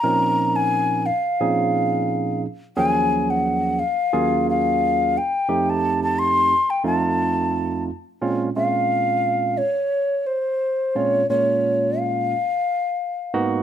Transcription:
X:1
M:4/4
L:1/16
Q:"Swing 16ths" 1/4=88
K:Fphr
V:1 name="Flute"
b3 a3 f8 z2 | a3 g3 f4 f4 =g2- | =g =a2 a c'3 g a6 z2 | [K:Bbm] z2 f6 d4 c4 |
d2 d4 f8 z2 |]
V:2 name="Tine electric piano"
[B,,F,CDEB]6 z2 [B,,F,CDEA]6 z2 | [E,,F,G,B,DA]6 z2 [E,,G,B,DFA]6 z2 | [F,,=A,CE=G]6 z2 [F,,A,CEF]6 z2 | [K:Bbm] [B,,A,CDF]2 [B,,A,CDF]6 z8 |
[B,,A,CDF]2 [B,,A,B,DF]6 z6 [A,,B,_CEG]2 |]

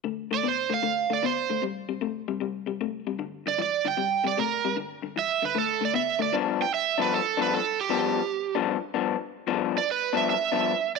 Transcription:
X:1
M:4/4
L:1/8
Q:"Swing" 1/4=153
K:Gmix
V:1 name="Electric slide guitar"
z d c f2 d c2 | z8 | z d d g2 d _B2 | z2 e B A d e d |
z g e B A B A G- | G3 z4 z | z d B e e3 z |]
V:2 name="Clean electric guitar" clef=bass
[D,A,] [D,A,] [D,B,] [D,A,] [D,A,] [D,A,] [D,B,] [D,A,] | [C,G,] [C,G,] [C,A,] [C,G,] [C,G,] [C,G,] [C,A,] [C,G,] | [G,,D,] [G,,D,] [G,,E,] [G,,D,] [C,G,] [C,G,] [C,A,] [C,G,] | [G,,D,] [G,,D,] [G,,E,] [G,,D,] [D,A,] [D,A,] [D,B,] [D,A,] |
[G,,F,B,D] z2 [G,,F,B,D] z [G,,F,B,D] z2 | [G,,F,B,D] z2 [G,,F,B,D] z [G,,F,B,D] z2 | [G,,F,B,D] z2 [G,,F,B,D] z [G,,F,B,D] z2 |]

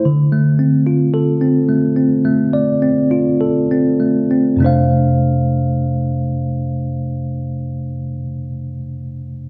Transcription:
X:1
M:4/4
L:1/16
Q:1/4=49
K:F
V:1 name="Tine electric piano"
D, A, C F A C A, C A, d C F A C A, C | [F,,C,A,Dcf]16 |]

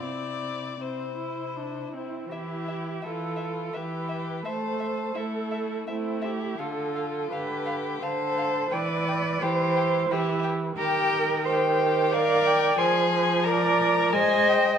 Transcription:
X:1
M:3/4
L:1/8
Q:1/4=85
K:C
V:1 name="Violin"
E2 E3 z | e e e e e e | e e e e e e | f f f f f f |
g g g g g g | [K:Cm] g2 g2 f g | a2 b2 a g |]
V:2 name="Cello"
C,4- C, E | G2 A2 B2 | c2 A2 E G | A2 B2 c2 |
d2 c2 G z | [K:Cm] B2 c2 d2 | c2 d2 e2 |]
V:3 name="Violin"
d2 c3 C | E2 F2 G2 | A2 E2 C E | F2 G2 A2 |
B2 G2 E z | [K:Cm] G2 G2 B2 | A2 B2 c2 |]
V:4 name="Viola" clef=bass
C2 C E D C | E,2 E,2 E,2 | A,2 A,2 A,2 | D,2 D,2 D,2 |
E,2 E,2 E,2 | [K:Cm] E,6 | F,4 A,2 |]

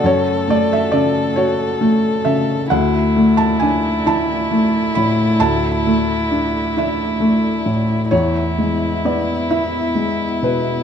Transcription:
X:1
M:6/8
L:1/16
Q:3/8=44
K:Dlyd
V:1 name="Ambient pad"
[A,FA]12 | [A,Ed]12- | [A,Ed]12 | [B,Ee]12 |]
V:2 name="Violin"
A12 | E12- | E12 | E12 |]
V:3 name="Felt piano"
c2 d e d2 c4 e2 | f3 a g2 a4 b2 | a6 e4 z2 | c4 d2 e4 B2 |]
V:4 name="Felt piano"
[F,,C,]2 A,2 C,2 F2 A,2 C,2 | D,,2 A,2 D2 E2 A,2 A,,2 | D,,2 A,2 D2 E2 A,2 A,,2 | E,,2 G,2 B,2 E2 G,2 B,,2 |]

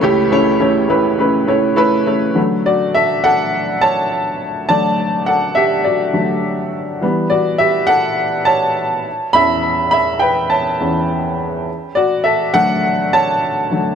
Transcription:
X:1
M:4/4
L:1/8
Q:"Swing 16ths" 1/4=103
K:D
V:1 name="Upright piano"
[A,CEG] [A,CEc] [A,CEc] [A,CEB] [A,CEB] [A,CEc] [A,CEB] [A,CEc] | z [Fd] [Ae] [Af]2 [ca]3 | [da]2 [Af] [Ge] [Fd]3 z | z [Fd] [Ge] [Af]2 [ca]3 |
[eb]2 [eb] [Bg] [ca]3 z | z [Fd] [Ae] [Af]2 [ca]3 |]
V:2 name="Upright piano" clef=bass
[C,,C,]8 | [D,F,A,] z6 z | [D,F,A,]4- [D,F,A,] [D,F,A,] z2 | [E,G,B,] z6 z |
[E,,E,C] z4 [E,,E,C] z2 | z3 [D,F,A,]4 [D,F,A,] |]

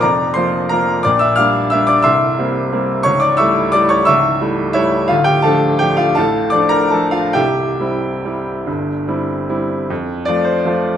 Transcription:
X:1
M:3/4
L:1/8
Q:1/4=170
K:Cdor
V:1 name="Grand piano"
[dbd']2 [cc']2 [Bb] z | [K:F] [dd'] [ee'] [fd'f']2 [ee'] [dd'] | [ec'e']6 | [^c^c'] [dd'] [ec'e']2 [dd'] [cc'] |
[e^c'e']4 [E^ce]2 | [Ff] [Gg] [Afa]2 [Gg] [Ff] | [Afa]2 [dd'] [Bb] [Aa] [Ff] | [Geg]6- |
[Geg]4 z2 | z2 d c3 |]
V:2 name="Grand piano" clef=bass
[F,,,F,,]2 [F,B,F]2 [F,B,F]2 | [K:F] [B,,,B,,]2 [G,B,D]2 [G,B,D]2 | [C,,,C,,]2 [G,B,C]2 [G,B,C]2 | [^C,,,^C,,]2 [G,A,E]2 [G,A,E]2 |
[^C,,,^C,,]2 [G,A,E]2 [G,A,]2 | [D,,,D,,]2 [F,A,D]2 [F,A,D]2 | [A,,,A,,]2 [F,A,D]2 [F,A,D]2 | [C,,,C,,]2 [G,CE]2 [G,CE]2 |
[G,,,G,,]2 [G,CE]2 [G,CE]2 | F,,2 [F,A,F]2 [F,A,F]2 |]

